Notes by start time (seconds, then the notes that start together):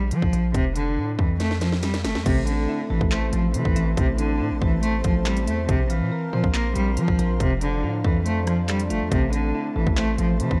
Already playing: A#1
0.11 F3, closed hi-hat
0.22 A#1, kick
0.33 A#1, closed hi-hat
0.54 F1 C3, kick, closed hi-hat
0.76 D3, closed hi-hat
0.97 A2
1.19 F2 E3, kick
1.40 A3, snare, closed hi-hat
1.51 snare
1.61 F3, snare, closed hi-hat
1.72 snare
1.83 G3, snare, closed hi-hat
1.94 snare, closed hi-hat
2.04 G1 A3, snare, closed hi-hat
2.15 F2, snare
2.26 A1 C3 A3 E4 C5 A5, kick, closed hi-hat, crash
2.47 D3 C4, closed hi-hat
2.69 E4
2.90 A1 E3 A4
3.01 A1, kick
3.11 A3 C5, clap, closed hi-hat
3.33 A1 F3 A3, closed hi-hat
3.54 C3 E3 C4, closed hi-hat
3.65 A1, kick
3.76 A1 E4, closed hi-hat
3.97 A1 C3 A3, kick, closed hi-hat
4.18 D3 C4, closed hi-hat
4.40 A2 E4
4.51 A1
4.62 A1 E3 A4, kick
4.83 A3 C5, closed hi-hat
5.04 A1 F3 A3, kick, closed hi-hat
5.25 G3 C4, clap, closed hi-hat
5.37 closed hi-hat
5.47 E2 A3 E4, closed hi-hat
5.69 A#1 C3 C4 F5 A#5, kick, closed hi-hat
5.90 E3 F5, closed hi-hat
6.01 A#2
6.12 A#4
6.33 A#2 F3 C5
6.44 A#1, kick
6.54 A#3 C6, clap, closed hi-hat
6.75 A#1 G3 C4, closed hi-hat
6.97 F3 F4, closed hi-hat
7.08 A#1, kick
7.19 A#1 A#4, closed hi-hat
7.40 F1 C3 F3 D5 A5, kick, closed hi-hat
7.61 D3 D4, closed hi-hat
7.83 A2 F4
8.04 F2 E3 A4, kick
8.26 A3 C5, closed hi-hat
8.47 F3, cross-stick, closed hi-hat
8.68 G3 D4, clap, closed hi-hat
8.79 closed hi-hat
8.90 G1 A3 F4, closed hi-hat
9.01 F2
9.12 A1 C3 A3 E4 C5, kick, closed hi-hat
9.33 D3 C4, closed hi-hat
9.55 E4
9.76 A1 E3 A4
9.87 A1, kick
9.97 A3 C5, clap, closed hi-hat
10.18 A1 F3 A3, closed hi-hat
10.40 C3 E3 C4, closed hi-hat
10.51 A1, kick